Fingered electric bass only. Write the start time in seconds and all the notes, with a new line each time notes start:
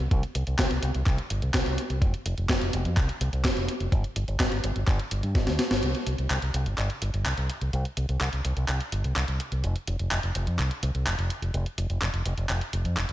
0.11 C2
0.35 C2
0.47 C2
0.59 C2
0.71 C2
0.83 C2
0.95 C2
1.06 C2
1.31 G1
1.42 C2
1.54 C2
1.66 C2
1.90 C2
2.02 F1
2.26 F1
2.38 F1
2.49 F1
2.61 F1
2.73 F1
2.85 F2
2.97 C2
3.21 C2
3.33 C2
3.57 F1
3.80 F1
3.92 G1
4.16 G1
4.28 G1
4.40 G1
4.52 G1
4.64 G1
4.76 G1
4.87 G1
5.11 G1
5.23 G2
5.35 G1
5.47 D2
5.71 G1
5.83 C2
6.07 C2
6.19 C2
6.30 C2
6.42 C2
6.54 C2
6.66 G1
6.78 G1
7.02 G1
7.14 G1
7.26 C2
7.38 C2
7.61 C2
7.73 C2
7.97 C2
8.09 C2
8.21 C2
8.33 C2
8.45 C2
8.57 C2
8.69 C2
8.92 G1
9.04 C2
9.16 C2
9.28 C2
9.52 C2
9.64 F1
9.88 F1
10.00 F1
10.11 F1
10.23 F1
10.35 F1
10.47 F2
10.59 C2
10.83 C2
10.95 C2
11.06 F1
11.18 F1
11.42 F1
11.54 F1
11.78 F1
11.90 F1
12.02 F1
12.14 F1
12.26 F1
12.37 F1
12.49 F1
12.73 F1
12.85 F2
12.97 F1
13.09 F1